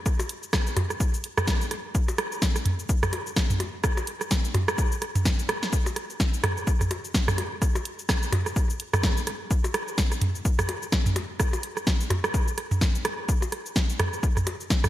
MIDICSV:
0, 0, Header, 1, 3, 480
1, 0, Start_track
1, 0, Tempo, 472441
1, 59, Time_signature, 4, 2, 24, 8
1, 15130, End_track
2, 0, Start_track
2, 0, Title_t, "Percussion blips"
2, 198, Note_on_c, 9, 63, 58
2, 299, Note_off_c, 9, 63, 0
2, 778, Note_on_c, 9, 63, 70
2, 880, Note_off_c, 9, 63, 0
2, 2117, Note_on_c, 9, 63, 56
2, 2219, Note_off_c, 9, 63, 0
2, 3178, Note_on_c, 9, 63, 52
2, 3280, Note_off_c, 9, 63, 0
2, 3658, Note_on_c, 9, 63, 55
2, 3759, Note_off_c, 9, 63, 0
2, 4037, Note_on_c, 9, 63, 56
2, 4139, Note_off_c, 9, 63, 0
2, 4617, Note_on_c, 9, 63, 68
2, 4719, Note_off_c, 9, 63, 0
2, 5957, Note_on_c, 9, 63, 58
2, 6059, Note_off_c, 9, 63, 0
2, 7019, Note_on_c, 9, 63, 54
2, 7120, Note_off_c, 9, 63, 0
2, 7499, Note_on_c, 9, 63, 58
2, 7600, Note_off_c, 9, 63, 0
2, 7878, Note_on_c, 9, 63, 60
2, 7980, Note_off_c, 9, 63, 0
2, 8458, Note_on_c, 9, 63, 74
2, 8560, Note_off_c, 9, 63, 0
2, 9797, Note_on_c, 9, 63, 60
2, 9899, Note_off_c, 9, 63, 0
2, 10859, Note_on_c, 9, 63, 57
2, 10960, Note_off_c, 9, 63, 0
2, 11338, Note_on_c, 9, 63, 62
2, 11440, Note_off_c, 9, 63, 0
2, 11717, Note_on_c, 9, 63, 63
2, 11818, Note_off_c, 9, 63, 0
2, 12297, Note_on_c, 9, 63, 77
2, 12399, Note_off_c, 9, 63, 0
2, 13637, Note_on_c, 9, 63, 58
2, 13739, Note_off_c, 9, 63, 0
2, 14699, Note_on_c, 9, 63, 55
2, 14800, Note_off_c, 9, 63, 0
2, 15130, End_track
3, 0, Start_track
3, 0, Title_t, "Drums"
3, 59, Note_on_c, 9, 36, 115
3, 59, Note_on_c, 9, 37, 39
3, 59, Note_on_c, 9, 82, 66
3, 160, Note_off_c, 9, 37, 0
3, 160, Note_off_c, 9, 82, 0
3, 161, Note_off_c, 9, 36, 0
3, 197, Note_on_c, 9, 82, 43
3, 298, Note_on_c, 9, 42, 89
3, 299, Note_off_c, 9, 82, 0
3, 400, Note_off_c, 9, 42, 0
3, 437, Note_on_c, 9, 82, 29
3, 539, Note_off_c, 9, 82, 0
3, 539, Note_on_c, 9, 36, 111
3, 539, Note_on_c, 9, 37, 78
3, 539, Note_on_c, 9, 38, 89
3, 539, Note_on_c, 9, 82, 62
3, 640, Note_off_c, 9, 36, 0
3, 640, Note_off_c, 9, 37, 0
3, 640, Note_off_c, 9, 38, 0
3, 640, Note_off_c, 9, 82, 0
3, 678, Note_on_c, 9, 82, 41
3, 778, Note_on_c, 9, 42, 91
3, 778, Note_on_c, 9, 45, 78
3, 779, Note_off_c, 9, 82, 0
3, 880, Note_off_c, 9, 42, 0
3, 880, Note_off_c, 9, 45, 0
3, 918, Note_on_c, 9, 37, 37
3, 918, Note_on_c, 9, 82, 28
3, 1018, Note_off_c, 9, 82, 0
3, 1018, Note_on_c, 9, 82, 63
3, 1019, Note_off_c, 9, 37, 0
3, 1019, Note_on_c, 9, 36, 112
3, 1120, Note_off_c, 9, 36, 0
3, 1120, Note_off_c, 9, 82, 0
3, 1158, Note_on_c, 9, 82, 42
3, 1259, Note_off_c, 9, 82, 0
3, 1259, Note_on_c, 9, 42, 93
3, 1360, Note_off_c, 9, 42, 0
3, 1397, Note_on_c, 9, 37, 80
3, 1397, Note_on_c, 9, 45, 81
3, 1398, Note_on_c, 9, 82, 31
3, 1498, Note_off_c, 9, 82, 0
3, 1498, Note_on_c, 9, 38, 85
3, 1498, Note_on_c, 9, 82, 61
3, 1499, Note_off_c, 9, 37, 0
3, 1499, Note_off_c, 9, 45, 0
3, 1499, Note_on_c, 9, 36, 115
3, 1600, Note_off_c, 9, 36, 0
3, 1600, Note_off_c, 9, 38, 0
3, 1600, Note_off_c, 9, 82, 0
3, 1638, Note_on_c, 9, 82, 43
3, 1738, Note_on_c, 9, 37, 39
3, 1738, Note_on_c, 9, 42, 89
3, 1739, Note_off_c, 9, 82, 0
3, 1840, Note_off_c, 9, 37, 0
3, 1840, Note_off_c, 9, 42, 0
3, 1978, Note_on_c, 9, 82, 66
3, 1979, Note_on_c, 9, 36, 116
3, 2080, Note_off_c, 9, 36, 0
3, 2080, Note_off_c, 9, 82, 0
3, 2117, Note_on_c, 9, 82, 45
3, 2218, Note_on_c, 9, 37, 80
3, 2219, Note_off_c, 9, 82, 0
3, 2219, Note_on_c, 9, 42, 87
3, 2320, Note_off_c, 9, 37, 0
3, 2320, Note_off_c, 9, 42, 0
3, 2358, Note_on_c, 9, 82, 31
3, 2459, Note_off_c, 9, 82, 0
3, 2459, Note_on_c, 9, 36, 116
3, 2459, Note_on_c, 9, 38, 91
3, 2459, Note_on_c, 9, 82, 66
3, 2560, Note_off_c, 9, 36, 0
3, 2560, Note_off_c, 9, 38, 0
3, 2560, Note_off_c, 9, 82, 0
3, 2597, Note_on_c, 9, 37, 41
3, 2597, Note_on_c, 9, 82, 42
3, 2698, Note_on_c, 9, 42, 88
3, 2698, Note_on_c, 9, 45, 84
3, 2699, Note_off_c, 9, 37, 0
3, 2699, Note_off_c, 9, 82, 0
3, 2799, Note_off_c, 9, 45, 0
3, 2800, Note_off_c, 9, 42, 0
3, 2837, Note_on_c, 9, 82, 29
3, 2938, Note_off_c, 9, 82, 0
3, 2938, Note_on_c, 9, 82, 69
3, 2939, Note_on_c, 9, 36, 115
3, 3040, Note_off_c, 9, 36, 0
3, 3040, Note_off_c, 9, 82, 0
3, 3077, Note_on_c, 9, 37, 80
3, 3077, Note_on_c, 9, 45, 77
3, 3077, Note_on_c, 9, 82, 43
3, 3178, Note_on_c, 9, 42, 91
3, 3179, Note_off_c, 9, 37, 0
3, 3179, Note_off_c, 9, 45, 0
3, 3179, Note_off_c, 9, 82, 0
3, 3280, Note_off_c, 9, 42, 0
3, 3318, Note_on_c, 9, 82, 31
3, 3418, Note_off_c, 9, 82, 0
3, 3418, Note_on_c, 9, 38, 89
3, 3418, Note_on_c, 9, 82, 64
3, 3419, Note_on_c, 9, 36, 117
3, 3419, Note_on_c, 9, 37, 42
3, 3520, Note_off_c, 9, 36, 0
3, 3520, Note_off_c, 9, 37, 0
3, 3520, Note_off_c, 9, 38, 0
3, 3520, Note_off_c, 9, 82, 0
3, 3557, Note_on_c, 9, 45, 86
3, 3557, Note_on_c, 9, 82, 45
3, 3658, Note_on_c, 9, 42, 88
3, 3659, Note_off_c, 9, 45, 0
3, 3659, Note_off_c, 9, 82, 0
3, 3760, Note_off_c, 9, 42, 0
3, 3898, Note_on_c, 9, 36, 115
3, 3898, Note_on_c, 9, 37, 86
3, 3898, Note_on_c, 9, 82, 68
3, 3999, Note_off_c, 9, 37, 0
3, 4000, Note_off_c, 9, 36, 0
3, 4000, Note_off_c, 9, 82, 0
3, 4037, Note_on_c, 9, 82, 44
3, 4138, Note_on_c, 9, 42, 91
3, 4139, Note_off_c, 9, 82, 0
3, 4239, Note_off_c, 9, 42, 0
3, 4277, Note_on_c, 9, 37, 41
3, 4277, Note_on_c, 9, 82, 31
3, 4378, Note_off_c, 9, 82, 0
3, 4378, Note_on_c, 9, 38, 94
3, 4378, Note_on_c, 9, 82, 65
3, 4379, Note_off_c, 9, 37, 0
3, 4379, Note_on_c, 9, 36, 118
3, 4479, Note_off_c, 9, 38, 0
3, 4479, Note_off_c, 9, 82, 0
3, 4480, Note_off_c, 9, 36, 0
3, 4517, Note_on_c, 9, 82, 45
3, 4617, Note_on_c, 9, 45, 85
3, 4618, Note_on_c, 9, 42, 89
3, 4619, Note_off_c, 9, 82, 0
3, 4719, Note_off_c, 9, 42, 0
3, 4719, Note_off_c, 9, 45, 0
3, 4757, Note_on_c, 9, 37, 84
3, 4758, Note_on_c, 9, 82, 31
3, 4858, Note_off_c, 9, 82, 0
3, 4858, Note_on_c, 9, 82, 69
3, 4859, Note_off_c, 9, 37, 0
3, 4859, Note_on_c, 9, 36, 119
3, 4960, Note_off_c, 9, 36, 0
3, 4960, Note_off_c, 9, 82, 0
3, 4997, Note_on_c, 9, 82, 44
3, 5098, Note_on_c, 9, 37, 42
3, 5098, Note_on_c, 9, 42, 94
3, 5099, Note_off_c, 9, 82, 0
3, 5200, Note_off_c, 9, 37, 0
3, 5200, Note_off_c, 9, 42, 0
3, 5237, Note_on_c, 9, 45, 86
3, 5238, Note_on_c, 9, 42, 39
3, 5238, Note_on_c, 9, 82, 33
3, 5338, Note_off_c, 9, 45, 0
3, 5339, Note_off_c, 9, 42, 0
3, 5339, Note_off_c, 9, 82, 0
3, 5339, Note_on_c, 9, 36, 112
3, 5339, Note_on_c, 9, 38, 93
3, 5339, Note_on_c, 9, 82, 66
3, 5440, Note_off_c, 9, 36, 0
3, 5440, Note_off_c, 9, 38, 0
3, 5440, Note_off_c, 9, 82, 0
3, 5478, Note_on_c, 9, 82, 48
3, 5577, Note_on_c, 9, 37, 84
3, 5579, Note_off_c, 9, 82, 0
3, 5579, Note_on_c, 9, 42, 90
3, 5679, Note_off_c, 9, 37, 0
3, 5680, Note_off_c, 9, 42, 0
3, 5718, Note_on_c, 9, 38, 65
3, 5718, Note_on_c, 9, 82, 31
3, 5819, Note_off_c, 9, 38, 0
3, 5819, Note_off_c, 9, 82, 0
3, 5819, Note_on_c, 9, 36, 119
3, 5819, Note_on_c, 9, 82, 68
3, 5920, Note_off_c, 9, 36, 0
3, 5920, Note_off_c, 9, 82, 0
3, 5957, Note_on_c, 9, 82, 42
3, 6058, Note_on_c, 9, 37, 40
3, 6058, Note_on_c, 9, 42, 91
3, 6059, Note_off_c, 9, 82, 0
3, 6159, Note_off_c, 9, 37, 0
3, 6160, Note_off_c, 9, 42, 0
3, 6198, Note_on_c, 9, 82, 30
3, 6299, Note_off_c, 9, 82, 0
3, 6299, Note_on_c, 9, 36, 116
3, 6299, Note_on_c, 9, 38, 96
3, 6299, Note_on_c, 9, 82, 66
3, 6400, Note_off_c, 9, 36, 0
3, 6401, Note_off_c, 9, 38, 0
3, 6401, Note_off_c, 9, 82, 0
3, 6438, Note_on_c, 9, 82, 43
3, 6538, Note_on_c, 9, 37, 85
3, 6538, Note_on_c, 9, 45, 85
3, 6539, Note_off_c, 9, 82, 0
3, 6539, Note_on_c, 9, 42, 94
3, 6640, Note_off_c, 9, 37, 0
3, 6640, Note_off_c, 9, 45, 0
3, 6641, Note_off_c, 9, 42, 0
3, 6678, Note_on_c, 9, 82, 29
3, 6779, Note_off_c, 9, 82, 0
3, 6779, Note_on_c, 9, 36, 121
3, 6779, Note_on_c, 9, 82, 69
3, 6880, Note_off_c, 9, 36, 0
3, 6880, Note_off_c, 9, 82, 0
3, 6918, Note_on_c, 9, 37, 41
3, 6918, Note_on_c, 9, 45, 84
3, 6918, Note_on_c, 9, 82, 45
3, 7019, Note_off_c, 9, 37, 0
3, 7019, Note_off_c, 9, 45, 0
3, 7019, Note_on_c, 9, 42, 94
3, 7020, Note_off_c, 9, 82, 0
3, 7121, Note_off_c, 9, 42, 0
3, 7158, Note_on_c, 9, 82, 33
3, 7259, Note_on_c, 9, 36, 114
3, 7260, Note_off_c, 9, 82, 0
3, 7260, Note_on_c, 9, 38, 95
3, 7260, Note_on_c, 9, 82, 62
3, 7360, Note_off_c, 9, 36, 0
3, 7361, Note_off_c, 9, 38, 0
3, 7361, Note_off_c, 9, 82, 0
3, 7397, Note_on_c, 9, 37, 84
3, 7397, Note_on_c, 9, 45, 94
3, 7399, Note_on_c, 9, 82, 45
3, 7499, Note_off_c, 9, 37, 0
3, 7499, Note_off_c, 9, 45, 0
3, 7500, Note_off_c, 9, 82, 0
3, 7500, Note_on_c, 9, 42, 96
3, 7601, Note_off_c, 9, 42, 0
3, 7739, Note_on_c, 9, 36, 123
3, 7739, Note_on_c, 9, 37, 42
3, 7740, Note_on_c, 9, 82, 66
3, 7840, Note_off_c, 9, 36, 0
3, 7840, Note_off_c, 9, 37, 0
3, 7841, Note_off_c, 9, 82, 0
3, 7878, Note_on_c, 9, 82, 44
3, 7980, Note_off_c, 9, 82, 0
3, 7980, Note_on_c, 9, 42, 99
3, 8081, Note_off_c, 9, 42, 0
3, 8119, Note_on_c, 9, 82, 30
3, 8219, Note_off_c, 9, 82, 0
3, 8219, Note_on_c, 9, 36, 126
3, 8219, Note_on_c, 9, 37, 84
3, 8219, Note_on_c, 9, 38, 94
3, 8219, Note_on_c, 9, 82, 64
3, 8320, Note_off_c, 9, 36, 0
3, 8320, Note_off_c, 9, 37, 0
3, 8321, Note_off_c, 9, 38, 0
3, 8321, Note_off_c, 9, 82, 0
3, 8358, Note_on_c, 9, 82, 42
3, 8458, Note_on_c, 9, 45, 87
3, 8459, Note_on_c, 9, 42, 99
3, 8460, Note_off_c, 9, 82, 0
3, 8560, Note_off_c, 9, 45, 0
3, 8561, Note_off_c, 9, 42, 0
3, 8597, Note_on_c, 9, 37, 39
3, 8598, Note_on_c, 9, 82, 29
3, 8699, Note_off_c, 9, 37, 0
3, 8699, Note_off_c, 9, 82, 0
3, 8699, Note_on_c, 9, 36, 122
3, 8699, Note_on_c, 9, 82, 65
3, 8800, Note_off_c, 9, 36, 0
3, 8801, Note_off_c, 9, 82, 0
3, 8838, Note_on_c, 9, 82, 45
3, 8939, Note_on_c, 9, 42, 102
3, 8940, Note_off_c, 9, 82, 0
3, 9040, Note_off_c, 9, 42, 0
3, 9078, Note_on_c, 9, 37, 80
3, 9078, Note_on_c, 9, 45, 88
3, 9078, Note_on_c, 9, 82, 33
3, 9179, Note_off_c, 9, 37, 0
3, 9179, Note_off_c, 9, 45, 0
3, 9179, Note_off_c, 9, 82, 0
3, 9179, Note_on_c, 9, 36, 123
3, 9179, Note_on_c, 9, 38, 95
3, 9179, Note_on_c, 9, 82, 62
3, 9280, Note_off_c, 9, 36, 0
3, 9280, Note_off_c, 9, 38, 0
3, 9280, Note_off_c, 9, 82, 0
3, 9318, Note_on_c, 9, 82, 45
3, 9418, Note_on_c, 9, 42, 99
3, 9419, Note_off_c, 9, 82, 0
3, 9419, Note_on_c, 9, 37, 40
3, 9520, Note_off_c, 9, 42, 0
3, 9521, Note_off_c, 9, 37, 0
3, 9659, Note_on_c, 9, 36, 127
3, 9659, Note_on_c, 9, 82, 64
3, 9760, Note_off_c, 9, 36, 0
3, 9761, Note_off_c, 9, 82, 0
3, 9798, Note_on_c, 9, 82, 41
3, 9898, Note_on_c, 9, 37, 76
3, 9898, Note_on_c, 9, 42, 100
3, 9899, Note_off_c, 9, 82, 0
3, 9999, Note_off_c, 9, 37, 0
3, 10000, Note_off_c, 9, 42, 0
3, 10038, Note_on_c, 9, 82, 30
3, 10138, Note_off_c, 9, 82, 0
3, 10138, Note_on_c, 9, 38, 95
3, 10138, Note_on_c, 9, 82, 61
3, 10139, Note_on_c, 9, 36, 126
3, 10240, Note_off_c, 9, 36, 0
3, 10240, Note_off_c, 9, 38, 0
3, 10240, Note_off_c, 9, 82, 0
3, 10278, Note_on_c, 9, 37, 39
3, 10278, Note_on_c, 9, 82, 41
3, 10378, Note_on_c, 9, 45, 86
3, 10379, Note_off_c, 9, 37, 0
3, 10379, Note_on_c, 9, 42, 97
3, 10380, Note_off_c, 9, 82, 0
3, 10480, Note_off_c, 9, 42, 0
3, 10480, Note_off_c, 9, 45, 0
3, 10518, Note_on_c, 9, 82, 28
3, 10619, Note_off_c, 9, 82, 0
3, 10619, Note_on_c, 9, 36, 123
3, 10619, Note_on_c, 9, 82, 66
3, 10720, Note_off_c, 9, 36, 0
3, 10720, Note_off_c, 9, 82, 0
3, 10757, Note_on_c, 9, 37, 79
3, 10757, Note_on_c, 9, 45, 78
3, 10758, Note_on_c, 9, 82, 42
3, 10858, Note_on_c, 9, 42, 102
3, 10859, Note_off_c, 9, 37, 0
3, 10859, Note_off_c, 9, 45, 0
3, 10859, Note_off_c, 9, 82, 0
3, 10960, Note_off_c, 9, 42, 0
3, 10998, Note_on_c, 9, 82, 31
3, 11098, Note_off_c, 9, 82, 0
3, 11098, Note_on_c, 9, 38, 95
3, 11098, Note_on_c, 9, 82, 60
3, 11099, Note_on_c, 9, 36, 127
3, 11099, Note_on_c, 9, 37, 40
3, 11200, Note_off_c, 9, 36, 0
3, 11200, Note_off_c, 9, 37, 0
3, 11200, Note_off_c, 9, 38, 0
3, 11200, Note_off_c, 9, 82, 0
3, 11237, Note_on_c, 9, 45, 96
3, 11237, Note_on_c, 9, 82, 43
3, 11339, Note_off_c, 9, 45, 0
3, 11339, Note_off_c, 9, 82, 0
3, 11339, Note_on_c, 9, 42, 98
3, 11440, Note_off_c, 9, 42, 0
3, 11578, Note_on_c, 9, 37, 77
3, 11579, Note_on_c, 9, 36, 123
3, 11579, Note_on_c, 9, 82, 61
3, 11680, Note_off_c, 9, 36, 0
3, 11680, Note_off_c, 9, 37, 0
3, 11681, Note_off_c, 9, 82, 0
3, 11718, Note_on_c, 9, 82, 40
3, 11819, Note_off_c, 9, 82, 0
3, 11819, Note_on_c, 9, 42, 94
3, 11920, Note_off_c, 9, 42, 0
3, 11956, Note_on_c, 9, 37, 38
3, 11958, Note_on_c, 9, 82, 29
3, 12058, Note_off_c, 9, 37, 0
3, 12059, Note_off_c, 9, 82, 0
3, 12059, Note_on_c, 9, 36, 124
3, 12059, Note_on_c, 9, 38, 90
3, 12059, Note_on_c, 9, 82, 60
3, 12160, Note_off_c, 9, 36, 0
3, 12161, Note_off_c, 9, 38, 0
3, 12161, Note_off_c, 9, 82, 0
3, 12197, Note_on_c, 9, 82, 41
3, 12297, Note_on_c, 9, 45, 83
3, 12298, Note_on_c, 9, 42, 96
3, 12299, Note_off_c, 9, 82, 0
3, 12399, Note_off_c, 9, 45, 0
3, 12400, Note_off_c, 9, 42, 0
3, 12436, Note_on_c, 9, 37, 77
3, 12437, Note_on_c, 9, 82, 27
3, 12538, Note_off_c, 9, 37, 0
3, 12538, Note_off_c, 9, 82, 0
3, 12538, Note_on_c, 9, 82, 61
3, 12539, Note_on_c, 9, 36, 124
3, 12640, Note_off_c, 9, 36, 0
3, 12640, Note_off_c, 9, 82, 0
3, 12677, Note_on_c, 9, 82, 42
3, 12778, Note_on_c, 9, 37, 38
3, 12778, Note_on_c, 9, 42, 100
3, 12779, Note_off_c, 9, 82, 0
3, 12880, Note_off_c, 9, 37, 0
3, 12880, Note_off_c, 9, 42, 0
3, 12917, Note_on_c, 9, 45, 85
3, 12917, Note_on_c, 9, 82, 31
3, 13018, Note_off_c, 9, 45, 0
3, 13019, Note_off_c, 9, 82, 0
3, 13019, Note_on_c, 9, 36, 123
3, 13019, Note_on_c, 9, 38, 87
3, 13019, Note_on_c, 9, 82, 58
3, 13120, Note_off_c, 9, 36, 0
3, 13120, Note_off_c, 9, 38, 0
3, 13120, Note_off_c, 9, 82, 0
3, 13158, Note_on_c, 9, 82, 44
3, 13258, Note_on_c, 9, 37, 74
3, 13258, Note_on_c, 9, 42, 99
3, 13259, Note_off_c, 9, 82, 0
3, 13360, Note_off_c, 9, 37, 0
3, 13360, Note_off_c, 9, 42, 0
3, 13499, Note_on_c, 9, 36, 119
3, 13499, Note_on_c, 9, 82, 63
3, 13600, Note_off_c, 9, 36, 0
3, 13600, Note_off_c, 9, 82, 0
3, 13638, Note_on_c, 9, 82, 41
3, 13739, Note_off_c, 9, 82, 0
3, 13739, Note_on_c, 9, 37, 39
3, 13739, Note_on_c, 9, 42, 91
3, 13841, Note_off_c, 9, 37, 0
3, 13841, Note_off_c, 9, 42, 0
3, 13878, Note_on_c, 9, 82, 30
3, 13979, Note_off_c, 9, 82, 0
3, 13979, Note_on_c, 9, 36, 119
3, 13979, Note_on_c, 9, 38, 89
3, 13979, Note_on_c, 9, 82, 60
3, 14080, Note_off_c, 9, 36, 0
3, 14081, Note_off_c, 9, 38, 0
3, 14081, Note_off_c, 9, 82, 0
3, 14118, Note_on_c, 9, 82, 42
3, 14219, Note_on_c, 9, 37, 76
3, 14219, Note_on_c, 9, 42, 95
3, 14219, Note_on_c, 9, 45, 83
3, 14220, Note_off_c, 9, 82, 0
3, 14321, Note_off_c, 9, 37, 0
3, 14321, Note_off_c, 9, 42, 0
3, 14321, Note_off_c, 9, 45, 0
3, 14359, Note_on_c, 9, 82, 27
3, 14459, Note_on_c, 9, 36, 119
3, 14460, Note_off_c, 9, 82, 0
3, 14460, Note_on_c, 9, 82, 62
3, 14560, Note_off_c, 9, 36, 0
3, 14561, Note_off_c, 9, 82, 0
3, 14598, Note_on_c, 9, 37, 38
3, 14598, Note_on_c, 9, 45, 75
3, 14599, Note_on_c, 9, 82, 42
3, 14699, Note_off_c, 9, 37, 0
3, 14699, Note_off_c, 9, 45, 0
3, 14699, Note_on_c, 9, 42, 98
3, 14700, Note_off_c, 9, 82, 0
3, 14801, Note_off_c, 9, 42, 0
3, 14838, Note_on_c, 9, 82, 31
3, 14939, Note_off_c, 9, 82, 0
3, 14939, Note_on_c, 9, 36, 123
3, 14939, Note_on_c, 9, 38, 86
3, 14939, Note_on_c, 9, 82, 59
3, 15040, Note_off_c, 9, 38, 0
3, 15040, Note_off_c, 9, 82, 0
3, 15041, Note_off_c, 9, 36, 0
3, 15078, Note_on_c, 9, 37, 75
3, 15078, Note_on_c, 9, 45, 87
3, 15078, Note_on_c, 9, 82, 42
3, 15130, Note_off_c, 9, 37, 0
3, 15130, Note_off_c, 9, 45, 0
3, 15130, Note_off_c, 9, 82, 0
3, 15130, End_track
0, 0, End_of_file